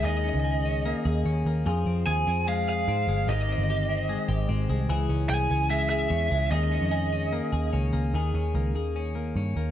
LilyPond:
<<
  \new Staff \with { instrumentName = "Lead electric guitar" } { \time 4/4 \key ees \mixolydian \tempo 4 = 148 ees''2. r4 | r4 aes''4 f''8 f''4. | ees''2. r4 | r4 aes''4 fes''8 fes''4. |
ees''2. r4 | r1 | }
  \new Staff \with { instrumentName = "Clean electric guitar" } { \time 4/4 \key ees \mixolydian <ees aes'>8 des'8 aes'8 des'8 bes8 aes'8 des'8 bes8 | <f aes'>8 c'8 aes'8 c'8 aes8 aes'8 c'8 aes8 | <ees g'>8 c'8 g'8 c'8 aes8 g'8 c'8 aes8 | <fes aes'>8 des'8 aes'8 des'8 aes8 aes'8 des'8 aes8 |
<ees aes'>8 des'8 aes'8 des'8 bes8 aes'8 des'8 bes8 | <ees aes'>8 des'8 bes8 aes'8 des'8 bes8 des'8 bes8 | }
  \new Staff \with { instrumentName = "Picked electric bass" } { \clef bass \time 4/4 \key ees \mixolydian ees,8. des,4. r16 ees,8 ees,8 ees,8 | f,8 f,8 ees,8 f,4. aes,8 g,,8 | aes,,8. g,,4. r16 aes,,8 aes,,8 c,8 | des,8 des,8 c,8 des,4. fes,8 des,8 |
ees,8. f,4. r16 ees,8 des,8 des,8 | ees,8 ees,8 des,8 ees,4. g,8 ees,8 | }
>>